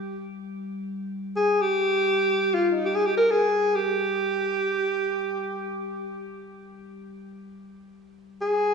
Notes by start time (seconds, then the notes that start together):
Already playing: G3 G4
1.36 G#4
1.61 G4
2.54 F4
2.69 D#4 F4
2.85 G4
2.95 G#4
3.06 G4
3.18 A#4
3.31 G#4
3.75 G4
8.41 G#4